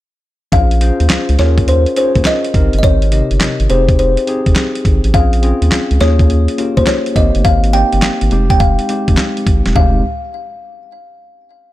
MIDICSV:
0, 0, Header, 1, 5, 480
1, 0, Start_track
1, 0, Key_signature, -4, "minor"
1, 0, Tempo, 576923
1, 436, Time_signature, 4, 2, 24, 8
1, 9759, End_track
2, 0, Start_track
2, 0, Title_t, "Kalimba"
2, 0, Program_c, 0, 108
2, 440, Note_on_c, 0, 77, 97
2, 1160, Note_on_c, 0, 73, 80
2, 1180, Note_off_c, 0, 77, 0
2, 1382, Note_off_c, 0, 73, 0
2, 1403, Note_on_c, 0, 72, 81
2, 1633, Note_off_c, 0, 72, 0
2, 1643, Note_on_c, 0, 72, 88
2, 1886, Note_on_c, 0, 75, 99
2, 1887, Note_off_c, 0, 72, 0
2, 2308, Note_off_c, 0, 75, 0
2, 2318, Note_on_c, 0, 75, 70
2, 2357, Note_off_c, 0, 75, 0
2, 2362, Note_on_c, 0, 73, 94
2, 3081, Note_on_c, 0, 72, 77
2, 3101, Note_off_c, 0, 73, 0
2, 3311, Note_off_c, 0, 72, 0
2, 3321, Note_on_c, 0, 72, 73
2, 4005, Note_off_c, 0, 72, 0
2, 4280, Note_on_c, 0, 77, 86
2, 4999, Note_on_c, 0, 73, 85
2, 5019, Note_off_c, 0, 77, 0
2, 5633, Note_on_c, 0, 72, 82
2, 5654, Note_off_c, 0, 73, 0
2, 5710, Note_off_c, 0, 72, 0
2, 5717, Note_on_c, 0, 73, 96
2, 5959, Note_on_c, 0, 75, 90
2, 5964, Note_off_c, 0, 73, 0
2, 6195, Note_on_c, 0, 77, 98
2, 6204, Note_off_c, 0, 75, 0
2, 6434, Note_on_c, 0, 79, 101
2, 6443, Note_off_c, 0, 77, 0
2, 7039, Note_off_c, 0, 79, 0
2, 7074, Note_on_c, 0, 79, 93
2, 7155, Note_on_c, 0, 77, 85
2, 7159, Note_off_c, 0, 79, 0
2, 7842, Note_off_c, 0, 77, 0
2, 8120, Note_on_c, 0, 77, 83
2, 8341, Note_off_c, 0, 77, 0
2, 9759, End_track
3, 0, Start_track
3, 0, Title_t, "Tine electric piano"
3, 0, Program_c, 1, 4
3, 432, Note_on_c, 1, 61, 68
3, 436, Note_on_c, 1, 65, 65
3, 439, Note_on_c, 1, 68, 61
3, 442, Note_on_c, 1, 72, 74
3, 573, Control_c, 1, 64, 127
3, 655, Note_off_c, 1, 61, 0
3, 657, Note_off_c, 1, 65, 0
3, 659, Note_off_c, 1, 68, 0
3, 660, Note_off_c, 1, 72, 0
3, 673, Note_on_c, 1, 61, 70
3, 676, Note_on_c, 1, 65, 64
3, 680, Note_on_c, 1, 68, 65
3, 683, Note_on_c, 1, 72, 81
3, 1145, Note_off_c, 1, 61, 0
3, 1148, Note_off_c, 1, 65, 0
3, 1151, Note_off_c, 1, 68, 0
3, 1155, Note_on_c, 1, 61, 81
3, 1158, Note_on_c, 1, 65, 73
3, 1160, Note_off_c, 1, 72, 0
3, 1161, Note_on_c, 1, 68, 69
3, 1165, Note_on_c, 1, 70, 88
3, 1166, Control_c, 1, 64, 0
3, 1303, Control_c, 1, 64, 127
3, 1598, Note_off_c, 1, 61, 0
3, 1600, Note_off_c, 1, 65, 0
3, 1601, Note_off_c, 1, 68, 0
3, 1603, Note_off_c, 1, 70, 0
3, 1634, Note_on_c, 1, 61, 68
3, 1637, Note_on_c, 1, 65, 61
3, 1641, Note_on_c, 1, 68, 60
3, 1642, Note_on_c, 1, 73, 76
3, 2115, Note_off_c, 1, 61, 0
3, 2115, Note_on_c, 1, 60, 76
3, 2116, Note_off_c, 1, 65, 0
3, 2118, Note_off_c, 1, 68, 0
3, 2119, Note_off_c, 1, 73, 0
3, 2119, Note_on_c, 1, 63, 76
3, 2121, Note_on_c, 1, 67, 68
3, 2125, Note_on_c, 1, 70, 85
3, 2127, Control_c, 1, 64, 0
3, 2249, Control_c, 1, 64, 127
3, 2558, Note_off_c, 1, 60, 0
3, 2560, Note_off_c, 1, 63, 0
3, 2561, Note_off_c, 1, 67, 0
3, 2563, Note_off_c, 1, 70, 0
3, 2592, Note_on_c, 1, 48, 71
3, 2595, Note_on_c, 1, 63, 64
3, 2598, Note_on_c, 1, 67, 63
3, 2601, Note_on_c, 1, 75, 78
3, 3066, Note_off_c, 1, 63, 0
3, 3070, Note_off_c, 1, 67, 0
3, 3073, Note_on_c, 1, 60, 80
3, 3074, Note_off_c, 1, 48, 0
3, 3075, Note_on_c, 1, 63, 77
3, 3079, Note_off_c, 1, 75, 0
3, 3080, Note_on_c, 1, 67, 71
3, 3083, Note_on_c, 1, 68, 85
3, 3088, Control_c, 1, 64, 0
3, 3210, Control_c, 1, 64, 127
3, 3517, Note_off_c, 1, 60, 0
3, 3518, Note_off_c, 1, 63, 0
3, 3520, Note_off_c, 1, 67, 0
3, 3522, Note_off_c, 1, 68, 0
3, 3554, Note_on_c, 1, 60, 72
3, 3558, Note_on_c, 1, 63, 63
3, 3561, Note_on_c, 1, 67, 62
3, 3564, Note_on_c, 1, 68, 78
3, 4219, Note_off_c, 1, 60, 0
3, 4220, Note_off_c, 1, 63, 0
3, 4222, Note_off_c, 1, 67, 0
3, 4224, Note_off_c, 1, 68, 0
3, 4273, Note_on_c, 1, 60, 70
3, 4276, Note_on_c, 1, 61, 64
3, 4280, Note_on_c, 1, 65, 60
3, 4283, Note_on_c, 1, 68, 78
3, 4287, Control_c, 1, 64, 0
3, 4428, Control_c, 1, 64, 127
3, 4496, Note_off_c, 1, 60, 0
3, 4497, Note_off_c, 1, 61, 0
3, 4499, Note_off_c, 1, 65, 0
3, 4501, Note_off_c, 1, 68, 0
3, 4513, Note_on_c, 1, 60, 71
3, 4517, Note_on_c, 1, 61, 69
3, 4520, Note_on_c, 1, 65, 69
3, 4523, Note_on_c, 1, 68, 75
3, 4987, Note_off_c, 1, 61, 0
3, 4991, Note_off_c, 1, 65, 0
3, 4994, Note_off_c, 1, 68, 0
3, 4995, Note_off_c, 1, 60, 0
3, 4995, Note_on_c, 1, 58, 78
3, 4997, Note_on_c, 1, 61, 66
3, 5000, Note_on_c, 1, 65, 70
3, 5004, Note_on_c, 1, 68, 86
3, 5008, Control_c, 1, 64, 0
3, 5132, Control_c, 1, 64, 127
3, 5438, Note_off_c, 1, 58, 0
3, 5439, Note_off_c, 1, 61, 0
3, 5441, Note_off_c, 1, 65, 0
3, 5443, Note_off_c, 1, 68, 0
3, 5474, Note_on_c, 1, 58, 72
3, 5477, Note_on_c, 1, 61, 68
3, 5480, Note_on_c, 1, 65, 65
3, 5484, Note_on_c, 1, 67, 78
3, 5941, Note_off_c, 1, 58, 0
3, 5951, Note_off_c, 1, 67, 0
3, 5951, Note_on_c, 1, 58, 74
3, 5955, Note_on_c, 1, 60, 77
3, 5957, Note_off_c, 1, 61, 0
3, 5958, Note_off_c, 1, 65, 0
3, 5959, Note_on_c, 1, 63, 71
3, 5961, Note_on_c, 1, 67, 85
3, 5968, Control_c, 1, 64, 0
3, 6137, Control_c, 1, 64, 127
3, 6396, Note_off_c, 1, 58, 0
3, 6398, Note_off_c, 1, 60, 0
3, 6400, Note_off_c, 1, 63, 0
3, 6401, Note_off_c, 1, 67, 0
3, 6434, Note_on_c, 1, 58, 70
3, 6437, Note_on_c, 1, 60, 66
3, 6441, Note_on_c, 1, 63, 59
3, 6444, Note_on_c, 1, 67, 81
3, 6909, Note_off_c, 1, 60, 0
3, 6913, Note_off_c, 1, 63, 0
3, 6915, Note_off_c, 1, 58, 0
3, 6916, Note_off_c, 1, 67, 0
3, 6916, Note_on_c, 1, 56, 77
3, 6919, Note_on_c, 1, 60, 66
3, 6923, Note_on_c, 1, 63, 67
3, 6926, Note_on_c, 1, 67, 91
3, 6928, Control_c, 1, 64, 0
3, 7085, Control_c, 1, 64, 127
3, 7358, Note_off_c, 1, 56, 0
3, 7360, Note_off_c, 1, 60, 0
3, 7362, Note_off_c, 1, 63, 0
3, 7364, Note_off_c, 1, 67, 0
3, 7397, Note_on_c, 1, 56, 72
3, 7400, Note_on_c, 1, 60, 59
3, 7403, Note_on_c, 1, 63, 61
3, 7407, Note_on_c, 1, 67, 79
3, 8060, Note_off_c, 1, 56, 0
3, 8062, Note_off_c, 1, 60, 0
3, 8063, Note_off_c, 1, 63, 0
3, 8065, Note_off_c, 1, 67, 0
3, 8120, Note_on_c, 1, 56, 76
3, 8120, Note_on_c, 1, 60, 69
3, 8120, Note_on_c, 1, 67, 81
3, 8121, Note_on_c, 1, 63, 68
3, 8126, Control_c, 1, 64, 0
3, 8341, Note_off_c, 1, 56, 0
3, 8341, Note_off_c, 1, 60, 0
3, 8342, Note_off_c, 1, 63, 0
3, 8342, Note_off_c, 1, 67, 0
3, 9759, End_track
4, 0, Start_track
4, 0, Title_t, "Analog synth bass"
4, 0, Program_c, 2, 38
4, 435, Note_on_c, 2, 34, 112
4, 760, Note_off_c, 2, 34, 0
4, 834, Note_on_c, 2, 39, 87
4, 901, Note_off_c, 2, 39, 0
4, 918, Note_on_c, 2, 37, 50
4, 981, Note_off_c, 2, 37, 0
4, 1075, Note_on_c, 2, 37, 89
4, 1142, Note_off_c, 2, 37, 0
4, 1157, Note_on_c, 2, 39, 92
4, 1548, Note_off_c, 2, 39, 0
4, 1794, Note_on_c, 2, 39, 100
4, 1861, Note_off_c, 2, 39, 0
4, 2115, Note_on_c, 2, 32, 99
4, 2244, Note_off_c, 2, 32, 0
4, 2276, Note_on_c, 2, 31, 79
4, 2342, Note_off_c, 2, 31, 0
4, 2355, Note_on_c, 2, 32, 112
4, 2680, Note_off_c, 2, 32, 0
4, 2753, Note_on_c, 2, 31, 87
4, 2820, Note_off_c, 2, 31, 0
4, 2836, Note_on_c, 2, 32, 49
4, 2899, Note_off_c, 2, 32, 0
4, 2994, Note_on_c, 2, 32, 88
4, 3061, Note_off_c, 2, 32, 0
4, 3077, Note_on_c, 2, 29, 98
4, 3468, Note_off_c, 2, 29, 0
4, 3716, Note_on_c, 2, 29, 88
4, 3782, Note_off_c, 2, 29, 0
4, 4037, Note_on_c, 2, 32, 101
4, 4165, Note_off_c, 2, 32, 0
4, 4193, Note_on_c, 2, 33, 84
4, 4261, Note_off_c, 2, 33, 0
4, 4276, Note_on_c, 2, 34, 111
4, 4601, Note_off_c, 2, 34, 0
4, 4674, Note_on_c, 2, 39, 102
4, 4741, Note_off_c, 2, 39, 0
4, 4757, Note_on_c, 2, 37, 47
4, 4820, Note_off_c, 2, 37, 0
4, 4917, Note_on_c, 2, 37, 89
4, 4983, Note_off_c, 2, 37, 0
4, 4998, Note_on_c, 2, 39, 105
4, 5389, Note_off_c, 2, 39, 0
4, 5635, Note_on_c, 2, 39, 92
4, 5702, Note_off_c, 2, 39, 0
4, 5956, Note_on_c, 2, 32, 100
4, 6085, Note_off_c, 2, 32, 0
4, 6116, Note_on_c, 2, 31, 95
4, 6183, Note_off_c, 2, 31, 0
4, 6197, Note_on_c, 2, 32, 113
4, 6521, Note_off_c, 2, 32, 0
4, 6597, Note_on_c, 2, 31, 88
4, 6663, Note_off_c, 2, 31, 0
4, 6680, Note_on_c, 2, 32, 47
4, 6742, Note_off_c, 2, 32, 0
4, 6837, Note_on_c, 2, 32, 92
4, 6903, Note_off_c, 2, 32, 0
4, 6918, Note_on_c, 2, 29, 100
4, 7309, Note_off_c, 2, 29, 0
4, 7555, Note_on_c, 2, 29, 93
4, 7622, Note_off_c, 2, 29, 0
4, 7877, Note_on_c, 2, 32, 103
4, 8005, Note_off_c, 2, 32, 0
4, 8037, Note_on_c, 2, 28, 87
4, 8103, Note_off_c, 2, 28, 0
4, 8118, Note_on_c, 2, 29, 111
4, 8340, Note_off_c, 2, 29, 0
4, 9759, End_track
5, 0, Start_track
5, 0, Title_t, "Drums"
5, 434, Note_on_c, 9, 42, 75
5, 435, Note_on_c, 9, 36, 101
5, 518, Note_off_c, 9, 36, 0
5, 518, Note_off_c, 9, 42, 0
5, 592, Note_on_c, 9, 42, 58
5, 674, Note_off_c, 9, 42, 0
5, 674, Note_on_c, 9, 42, 75
5, 757, Note_off_c, 9, 42, 0
5, 833, Note_on_c, 9, 42, 49
5, 912, Note_on_c, 9, 39, 94
5, 913, Note_on_c, 9, 38, 113
5, 915, Note_off_c, 9, 42, 0
5, 915, Note_on_c, 9, 42, 78
5, 995, Note_off_c, 9, 39, 0
5, 996, Note_off_c, 9, 38, 0
5, 998, Note_off_c, 9, 42, 0
5, 1073, Note_on_c, 9, 42, 49
5, 1153, Note_off_c, 9, 42, 0
5, 1153, Note_on_c, 9, 42, 56
5, 1156, Note_on_c, 9, 38, 64
5, 1237, Note_off_c, 9, 42, 0
5, 1239, Note_off_c, 9, 38, 0
5, 1312, Note_on_c, 9, 36, 85
5, 1312, Note_on_c, 9, 42, 51
5, 1395, Note_off_c, 9, 36, 0
5, 1396, Note_off_c, 9, 42, 0
5, 1396, Note_on_c, 9, 42, 76
5, 1480, Note_off_c, 9, 42, 0
5, 1551, Note_on_c, 9, 42, 45
5, 1634, Note_off_c, 9, 42, 0
5, 1635, Note_on_c, 9, 42, 70
5, 1718, Note_off_c, 9, 42, 0
5, 1792, Note_on_c, 9, 42, 50
5, 1793, Note_on_c, 9, 36, 77
5, 1871, Note_on_c, 9, 39, 89
5, 1872, Note_on_c, 9, 38, 101
5, 1873, Note_off_c, 9, 42, 0
5, 1873, Note_on_c, 9, 42, 71
5, 1876, Note_off_c, 9, 36, 0
5, 1954, Note_off_c, 9, 39, 0
5, 1955, Note_off_c, 9, 38, 0
5, 1957, Note_off_c, 9, 42, 0
5, 2034, Note_on_c, 9, 42, 47
5, 2115, Note_on_c, 9, 36, 90
5, 2116, Note_off_c, 9, 42, 0
5, 2116, Note_on_c, 9, 42, 64
5, 2198, Note_off_c, 9, 36, 0
5, 2199, Note_off_c, 9, 42, 0
5, 2273, Note_on_c, 9, 42, 53
5, 2355, Note_on_c, 9, 36, 102
5, 2356, Note_off_c, 9, 42, 0
5, 2356, Note_on_c, 9, 42, 71
5, 2438, Note_off_c, 9, 36, 0
5, 2439, Note_off_c, 9, 42, 0
5, 2513, Note_on_c, 9, 42, 52
5, 2595, Note_off_c, 9, 42, 0
5, 2595, Note_on_c, 9, 42, 71
5, 2678, Note_off_c, 9, 42, 0
5, 2753, Note_on_c, 9, 42, 52
5, 2833, Note_on_c, 9, 39, 96
5, 2834, Note_on_c, 9, 38, 115
5, 2836, Note_off_c, 9, 42, 0
5, 2836, Note_on_c, 9, 42, 79
5, 2916, Note_off_c, 9, 39, 0
5, 2917, Note_off_c, 9, 38, 0
5, 2919, Note_off_c, 9, 42, 0
5, 2994, Note_on_c, 9, 42, 51
5, 3075, Note_off_c, 9, 42, 0
5, 3075, Note_on_c, 9, 42, 56
5, 3158, Note_off_c, 9, 42, 0
5, 3233, Note_on_c, 9, 36, 80
5, 3235, Note_on_c, 9, 42, 53
5, 3316, Note_off_c, 9, 36, 0
5, 3318, Note_off_c, 9, 42, 0
5, 3319, Note_on_c, 9, 42, 68
5, 3403, Note_off_c, 9, 42, 0
5, 3472, Note_on_c, 9, 42, 45
5, 3555, Note_off_c, 9, 42, 0
5, 3556, Note_on_c, 9, 42, 73
5, 3640, Note_off_c, 9, 42, 0
5, 3713, Note_on_c, 9, 42, 54
5, 3714, Note_on_c, 9, 36, 78
5, 3792, Note_on_c, 9, 39, 80
5, 3793, Note_on_c, 9, 38, 101
5, 3794, Note_off_c, 9, 42, 0
5, 3794, Note_on_c, 9, 42, 64
5, 3797, Note_off_c, 9, 36, 0
5, 3875, Note_off_c, 9, 39, 0
5, 3876, Note_off_c, 9, 38, 0
5, 3877, Note_off_c, 9, 42, 0
5, 3955, Note_on_c, 9, 42, 49
5, 4035, Note_on_c, 9, 36, 88
5, 4037, Note_off_c, 9, 42, 0
5, 4037, Note_on_c, 9, 42, 68
5, 4119, Note_off_c, 9, 36, 0
5, 4120, Note_off_c, 9, 42, 0
5, 4194, Note_on_c, 9, 42, 61
5, 4276, Note_on_c, 9, 36, 116
5, 4277, Note_off_c, 9, 42, 0
5, 4278, Note_on_c, 9, 42, 72
5, 4359, Note_off_c, 9, 36, 0
5, 4361, Note_off_c, 9, 42, 0
5, 4435, Note_on_c, 9, 42, 57
5, 4517, Note_off_c, 9, 42, 0
5, 4517, Note_on_c, 9, 42, 73
5, 4600, Note_off_c, 9, 42, 0
5, 4676, Note_on_c, 9, 42, 53
5, 4756, Note_on_c, 9, 39, 87
5, 4757, Note_on_c, 9, 38, 115
5, 4758, Note_off_c, 9, 42, 0
5, 4758, Note_on_c, 9, 42, 77
5, 4839, Note_off_c, 9, 39, 0
5, 4840, Note_off_c, 9, 38, 0
5, 4841, Note_off_c, 9, 42, 0
5, 4916, Note_on_c, 9, 42, 52
5, 4996, Note_off_c, 9, 42, 0
5, 4996, Note_on_c, 9, 42, 54
5, 4998, Note_on_c, 9, 38, 70
5, 5079, Note_off_c, 9, 42, 0
5, 5082, Note_off_c, 9, 38, 0
5, 5153, Note_on_c, 9, 36, 82
5, 5156, Note_on_c, 9, 42, 47
5, 5237, Note_off_c, 9, 36, 0
5, 5239, Note_off_c, 9, 42, 0
5, 5241, Note_on_c, 9, 42, 70
5, 5324, Note_off_c, 9, 42, 0
5, 5394, Note_on_c, 9, 42, 48
5, 5477, Note_off_c, 9, 42, 0
5, 5477, Note_on_c, 9, 42, 69
5, 5561, Note_off_c, 9, 42, 0
5, 5634, Note_on_c, 9, 36, 84
5, 5635, Note_on_c, 9, 42, 54
5, 5713, Note_on_c, 9, 39, 89
5, 5714, Note_on_c, 9, 38, 106
5, 5715, Note_off_c, 9, 42, 0
5, 5715, Note_on_c, 9, 42, 67
5, 5718, Note_off_c, 9, 36, 0
5, 5796, Note_off_c, 9, 39, 0
5, 5797, Note_off_c, 9, 38, 0
5, 5798, Note_off_c, 9, 42, 0
5, 5876, Note_on_c, 9, 42, 48
5, 5955, Note_on_c, 9, 36, 89
5, 5957, Note_off_c, 9, 42, 0
5, 5957, Note_on_c, 9, 42, 70
5, 6038, Note_off_c, 9, 36, 0
5, 6040, Note_off_c, 9, 42, 0
5, 6113, Note_on_c, 9, 42, 54
5, 6196, Note_off_c, 9, 42, 0
5, 6196, Note_on_c, 9, 36, 99
5, 6196, Note_on_c, 9, 42, 75
5, 6279, Note_off_c, 9, 36, 0
5, 6279, Note_off_c, 9, 42, 0
5, 6353, Note_on_c, 9, 42, 55
5, 6435, Note_off_c, 9, 42, 0
5, 6435, Note_on_c, 9, 42, 72
5, 6518, Note_off_c, 9, 42, 0
5, 6593, Note_on_c, 9, 42, 48
5, 6673, Note_on_c, 9, 39, 91
5, 6674, Note_on_c, 9, 38, 113
5, 6676, Note_off_c, 9, 42, 0
5, 6676, Note_on_c, 9, 42, 76
5, 6756, Note_off_c, 9, 39, 0
5, 6757, Note_off_c, 9, 38, 0
5, 6759, Note_off_c, 9, 42, 0
5, 6833, Note_on_c, 9, 42, 52
5, 6914, Note_off_c, 9, 42, 0
5, 6914, Note_on_c, 9, 42, 54
5, 6997, Note_off_c, 9, 42, 0
5, 7072, Note_on_c, 9, 36, 80
5, 7073, Note_on_c, 9, 42, 46
5, 7156, Note_off_c, 9, 36, 0
5, 7156, Note_off_c, 9, 42, 0
5, 7157, Note_on_c, 9, 36, 88
5, 7157, Note_on_c, 9, 42, 73
5, 7240, Note_off_c, 9, 36, 0
5, 7240, Note_off_c, 9, 42, 0
5, 7311, Note_on_c, 9, 42, 46
5, 7394, Note_off_c, 9, 42, 0
5, 7396, Note_on_c, 9, 42, 72
5, 7479, Note_off_c, 9, 42, 0
5, 7554, Note_on_c, 9, 36, 78
5, 7554, Note_on_c, 9, 42, 54
5, 7632, Note_on_c, 9, 39, 87
5, 7633, Note_on_c, 9, 38, 110
5, 7634, Note_off_c, 9, 42, 0
5, 7634, Note_on_c, 9, 42, 66
5, 7638, Note_off_c, 9, 36, 0
5, 7715, Note_off_c, 9, 39, 0
5, 7716, Note_off_c, 9, 38, 0
5, 7717, Note_off_c, 9, 42, 0
5, 7796, Note_on_c, 9, 42, 52
5, 7876, Note_on_c, 9, 36, 92
5, 7877, Note_off_c, 9, 42, 0
5, 7877, Note_on_c, 9, 42, 73
5, 7959, Note_off_c, 9, 36, 0
5, 7960, Note_off_c, 9, 42, 0
5, 8034, Note_on_c, 9, 42, 61
5, 8035, Note_on_c, 9, 38, 67
5, 8117, Note_off_c, 9, 42, 0
5, 8117, Note_on_c, 9, 36, 96
5, 8117, Note_on_c, 9, 43, 101
5, 8118, Note_off_c, 9, 38, 0
5, 8200, Note_off_c, 9, 36, 0
5, 8200, Note_off_c, 9, 43, 0
5, 9759, End_track
0, 0, End_of_file